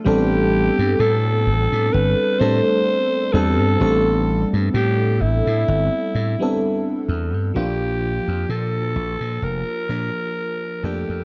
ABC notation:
X:1
M:4/4
L:1/16
Q:"Swing 16ths" 1/4=64
K:Aphr
V:1 name="Alto saxophone"
G4 A4 =B2 c4 A2- | A2 z2 G2 E8 z2 | G4 A4 B6 G2 |]
V:2 name="FM electric piano"
[G,=B,CDA]8- [G,B,CDA]2 [G,A,CDA]4 [G,B,CDA]2 | [G,=B,CDA]8- [G,B,CDA]3 [G,B,CDA]4- [G,B,CDA] | [F,B,DF]8- [F,B,DF]2 [F,B,DB]4 [F,A,B,DA]2 |]
V:3 name="Slap bass" clef=bass
A,,,3 G,, A,,2 A,,, A,, G,,, z A,, z3 E,, G,, | A,,,3 G,, A,,2 A,,, A,, G,,, z A,, z3 E,, G,, | B,,,3 F,, B,,2 B,,, B,, F,,, z B,, z3 F,, F,, |]